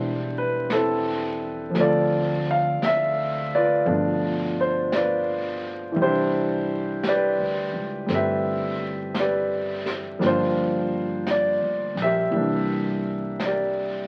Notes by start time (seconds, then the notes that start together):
Already playing: E1 G3 A3 C4 D4 E4 G4 C5 D5 E5
0.38 B4
0.70 C4 E4 A4, brush sweep, snare, hi-hat pedal
1.70 F3 A3
1.75 D2 C4, brush sweep, snare
1.80 F4 A4 D5
2.51 F5
2.82 D2 E5, brush sweep, snare, hi-hat pedal
3.55 F4 B4 D5
3.85 G1 B2 F3 A3 D4, brush sweep
4.61 C5
4.92 F4 B4 D5, brush sweep, snare, hi-hat pedal
5.92 E3 G3
5.96 C2, brush sweep
6.01 D4 E4 G4 C5
7.03 brush sweep, snare, hi-hat pedal
7.08 G4 B4 D5
7.38 D2
7.73 C#2
8.06 G1 G3 A3 C4, brush sweep, snare
8.14 G4 B4 E5
9.14 brush sweep, snare, hi-hat pedal
9.19 G4 B4 D5
9.86 snare
10.19 G1 F3 G3 A#3 D4, brush sweep, snare
10.26 F4 C5
11.27 brush sweep, snare, hi-hat pedal
11.31 D5
11.62 D2
11.95 A#1, snare
12.02 G4 A#4 E5
12.31 C2 E3 G3 A#3, brush sweep
12.36 D4
13.40 brush sweep, snare, hi-hat pedal
13.45 G4 A#4 D5